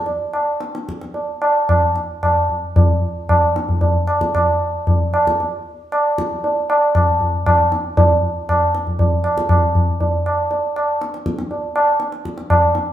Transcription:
0.06 tabla tin medium
0.33 tabla na medium
0.60 tabla te medium
0.75 tabla te medium
0.89 tabla ke medium
1.01 tabla te medium
1.14 tabla tin medium
1.42 tabla na medium
1.69 tabla na medium
1.69 tabla ge medium
1.96 tabla te medium
2.23 tabla na medium
2.23 tabla ge medium
2.50 tabla ge soft
2.76 tabla tin medium
2.76 tabla ge medium
3.29 tabla na medium
3.29 tabla ge medium
3.56 tabla te medium
3.69 tabla ge medium
3.81 tabla tin medium
3.81 tabla ge medium
4.07 tabla na medium
4.21 tabla ke medium
4.35 tabla na medium
4.35 tabla ge medium
4.87 tabla tin medium
4.87 tabla ge medium
5.14 tabla na medium
5.27 tabla ke medium
5.40 tabla tin medium
5.92 tabla na medium
6.18 tabla ke medium
6.44 tabla tin medium
6.70 tabla na medium
6.95 tabla na medium
6.95 tabla ge medium
7.21 tabla ge medium
7.46 tabla na medium
7.46 tabla ge medium
7.72 tabla te medium
7.97 tabla tin loud
7.97 tabla ge medium
8.49 tabla na medium
8.49 tabla ge medium
8.75 tabla te medium
8.87 tabla ge soft
8.99 tabla tin medium
8.99 tabla ge medium
9.24 tabla na medium
9.37 tabla ke medium
9.49 tabla na medium
9.49 tabla ge medium
9.75 tabla ge medium
10.01 tabla tin medium
10.01 tabla ge medium
10.26 tabla na medium
10.51 tabla tin medium
10.76 tabla na medium
11.01 tabla te medium
11.14 tabla te medium
11.26 tabla ke medium
11.39 tabla te medium
11.51 tabla tin medium
11.76 tabla na medium
12.00 tabla te medium
12.12 tabla te medium
12.25 tabla ke medium
12.38 tabla te medium
12.50 tabla na medium
12.50 tabla ge medium
12.75 tabla te medium

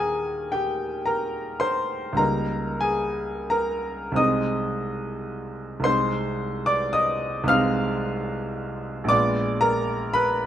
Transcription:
0.00 2.12 D#2 soft
0.00 2.13 D#3 soft
0.00 2.14 A#3 soft
0.00 2.14 D#4 soft
0.00 0.53 G4 soft
0.00 0.49 G#4 medium
0.00 1.07 A#4 medium
0.00 0.52 G5 medium
0.00 0.52 G#5 medium
0.00 1.06 A#5 medium
0.52 1.04 G4 medium
0.52 1.07 G5 medium
1.06 1.58 A#4 medium
1.06 1.61 A#5 medium
1.60 2.14 C5 medium
1.60 2.18 C6 medium
2.13 4.11 C#2 soft
2.13 4.12 G3 soft
2.13 4.13 A#3 soft
2.17 4.14 D#4 soft
2.17 2.78 A#4 medium
2.17 2.82 A#5 medium
2.81 3.48 G#4 medium
2.81 3.51 G#5 medium
3.50 4.14 A#4 medium
3.50 4.17 A#5 medium
4.12 5.78 C2 soft
4.12 5.80 G#3 soft
4.12 5.81 C4 soft
4.16 5.82 D#4 soft
4.16 5.82 D#5 medium
4.16 5.85 D#6 medium
5.80 7.42 C2 soft
5.80 7.44 G#3 soft
5.80 7.45 C4 soft
5.84 7.46 D#4 soft
5.84 6.64 C5 medium
5.84 6.67 C6 medium
6.66 6.93 D5 medium
6.66 6.94 D6 medium
6.93 7.46 D#5 medium
6.93 7.49 D#6 medium
7.44 9.04 C2 medium
7.44 9.05 G#3 soft
7.44 9.06 C4 soft
7.48 9.06 D#4 soft
7.48 9.07 F5 medium
7.48 9.10 F6 loud
9.04 10.46 A#1 medium
9.04 10.46 G#3 soft
9.04 10.46 B3 soft
9.09 10.46 F4 soft
9.09 9.59 D5 medium
9.09 9.62 D6 loud
9.61 10.12 A#4 medium
9.61 10.15 A#5 loud
10.14 10.46 B4 medium
10.14 10.46 B5 loud

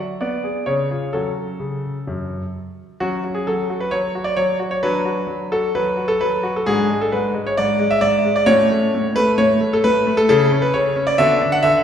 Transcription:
0.00 0.21 F#4 soft
0.21 0.43 B3 medium
0.21 0.63 D5 medium
0.44 0.61 G#4 soft
0.66 0.89 C#3 medium
0.66 1.13 C#5 medium
0.91 1.07 F4 soft
0.91 1.07 G#4 soft
1.13 1.47 F#3 medium
1.13 1.52 C#4 soft
1.13 1.52 F#4 soft
1.13 2.54 A4 medium
1.59 1.93 C#3 soft
2.07 2.40 F#2 medium
3.00 3.23 F#3 medium
3.00 4.79 C#4 medium
3.00 3.23 F#4 medium
3.24 3.46 F#4 medium
3.34 3.46 G#4 medium
3.47 3.69 F#3 medium
3.47 3.81 A4 medium
3.70 3.92 F#4 medium
3.80 3.92 B4 medium
3.91 4.14 F#3 medium
3.91 4.26 C#5 medium
4.15 4.37 F#4 medium
4.24 4.37 D5 medium
4.36 4.59 F#3 medium
4.36 4.57 C#5 medium
4.60 4.81 F#4 medium
4.71 4.83 C#5 medium
4.83 5.06 F#3 medium
4.83 6.63 D4 medium
4.83 5.04 F#4 soft
4.83 5.48 B4 loud
5.05 5.28 F#4 medium
5.27 5.50 F#3 medium
5.52 5.75 F#4 medium
5.52 5.73 A4 medium
5.75 5.97 F#3 medium
5.75 6.10 B4 medium
5.97 6.20 F#4 medium
6.08 6.20 A4 medium
6.21 6.43 F#3 medium
6.21 6.52 B4 medium
6.43 6.66 F#4 medium
6.56 6.67 A4 medium
6.66 6.89 G#2 medium
6.66 8.44 D4 medium
6.66 8.45 F#4 medium
6.66 6.97 G#4 loud
6.90 7.12 G#3 medium
7.01 7.13 A4 medium
7.12 7.35 G#2 medium
7.12 7.33 B4 medium
7.34 7.57 G#3 medium
7.46 7.58 C#5 medium
7.57 7.80 G#2 medium
7.57 7.88 D5 loud
7.79 8.02 G#3 medium
7.91 8.02 E5 loud
8.01 8.24 G#2 medium
8.01 8.34 D5 loud
8.25 8.47 G#3 medium
8.36 8.48 D5 medium
8.46 8.69 A2 medium
8.46 10.24 C#4 medium
8.46 10.24 F#4 medium
8.46 9.15 C#5 loud
8.71 8.93 A3 medium
8.94 9.16 A2 medium
9.16 9.38 A3 medium
9.16 9.29 B4 loud
9.38 9.60 A2 medium
9.38 9.72 C#5 loud
9.61 9.83 A3 medium
9.73 9.84 A4 loud
9.84 10.06 A2 medium
9.84 10.14 B4 loud
10.07 10.28 A3 medium
10.17 10.28 A4 loud
10.29 10.51 C#3 medium
10.29 10.51 C#4 medium
10.29 11.14 E4 medium
10.29 10.62 A4 loud
10.52 10.73 C#4 medium
10.62 10.73 B4 loud
10.74 10.95 C#3 medium
10.74 11.04 C#5 loud
10.96 11.18 C#4 medium
11.07 11.18 D5 loud
11.18 11.40 D3 medium
11.18 11.84 B3 medium
11.18 11.84 F#4 medium
11.18 11.48 E5 loud
11.42 11.63 D4 medium
11.52 11.63 F#5 loud
11.63 11.84 D3 medium
11.63 11.84 E5 loud

